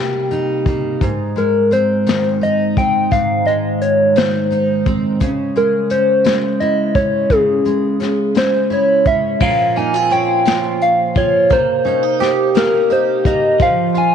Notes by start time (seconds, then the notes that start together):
Already playing: C3 G3 A#3 D#4 G5
0.31 D#4, closed hi-hat
0.66 A#3, kick, closed hi-hat
1.01 G#2, kick, closed hi-hat
1.36 G#3 A#4, closed hi-hat
1.71 C4 C5, closed hi-hat
2.07 D#3, snare, closed hi-hat
2.41 D#4 D#5, closed hi-hat
2.77 C4 G5, kick, closed hi-hat
3.11 G#2 F5, kick, closed hi-hat
3.45 G#3 D#5, closed hi-hat
3.81 C#5, closed hi-hat
4.16 D#3 C5, snare, closed hi-hat
4.51 D#4, closed hi-hat
4.86 C4, kick, closed hi-hat
5.20 C#3, kick, closed hi-hat
5.56 G#3 A#4, closed hi-hat
5.90 C#4 C5, closed hi-hat
6.24 G#3, snare, closed hi-hat
6.60 E4 D#5, closed hi-hat
6.95 C#4 C#5, kick, closed hi-hat
7.30 C#3 G#4, kick, closed hi-hat
7.65 G#3, closed hi-hat
8.00 C#4, snare, closed hi-hat
8.35 G#3 C5, snare, closed hi-hat
8.70 E4 C#5, closed hi-hat
9.05 C#4 E5, kick, closed hi-hat
9.40 A#2 F3 F5, kick, crash
9.76 A#3 D#4 G#5, closed hi-hat
9.94 C4 F4
10.10 C#4 C5 G5, closed hi-hat
10.45 F3 F4, snare, closed hi-hat
10.81 F5, closed hi-hat
11.16 F3 F4 C#5, kick, closed hi-hat
11.50 C3 A#3 C5, kick, closed hi-hat
11.85 C#4 D#4, closed hi-hat
12.03 D#4
12.20 G4, snare, closed hi-hat
12.54 A#3 D#4 A#4, snare, closed hi-hat
12.90 D#4 G4 C5, closed hi-hat
13.25 A#3 D#4 D#5, kick, closed hi-hat
13.60 F3 F5, kick, closed hi-hat
13.94 F4 G#5, closed hi-hat